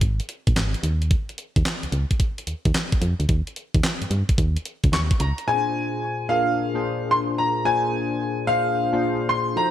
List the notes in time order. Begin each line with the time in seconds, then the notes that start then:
0.01 G#1, kick, closed hi-hat
0.20 closed hi-hat
0.29 closed hi-hat
0.47 A#1, kick, closed hi-hat
0.56 G#1, snare, clap, closed hi-hat
0.74 closed hi-hat
0.83 D#2, closed hi-hat
1.02 closed hi-hat
1.11 kick, closed hi-hat
1.29 closed hi-hat
1.38 closed hi-hat
1.56 D#2, kick, closed hi-hat
1.65 snare, clap, closed hi-hat
1.83 C#2, closed hi-hat
1.92 C#2, closed hi-hat
2.11 kick, closed hi-hat
2.20 kick, closed hi-hat
2.38 closed hi-hat
2.47 D#2, closed hi-hat
2.65 D#2, kick, closed hi-hat
2.74 snare, clap, closed hi-hat
2.92 kick, closed hi-hat
3.02 F2, closed hi-hat
3.20 D2, closed hi-hat
3.29 D#2, kick, closed hi-hat
3.47 closed hi-hat
3.56 closed hi-hat
3.75 D#2, kick, closed hi-hat
3.83 snare, clap, closed hi-hat
4.02 G2, closed hi-hat
4.11 G2, closed hi-hat
4.29 kick, closed hi-hat
4.38 D#2, kick, closed hi-hat
4.57 closed hi-hat
4.65 closed hi-hat
4.84 C#2, kick, closed hi-hat
4.92 D#2 C#6, snare, clap, closed hi-hat
5.11 kick, closed hi-hat
5.20 C#2 A#5, closed hi-hat
5.38 closed hi-hat
5.47 A#2 C4 F4 G#4 C5 G#5
5.54 D4
6.29 A#2 D4 F4 G#4 A#4 F5
6.74 A#2 D4 F4 G#4 C5
7.11 C6
7.38 A#5
7.65 A#2 D4 F4 G#4 C5 G#5
8.47 A#2 D4 F4 G#4 C5 F5
8.92 A#2 D4 F4 G#4 C5
9.29 C6
9.56 F3 D#4 F#4 A4 C5 A#5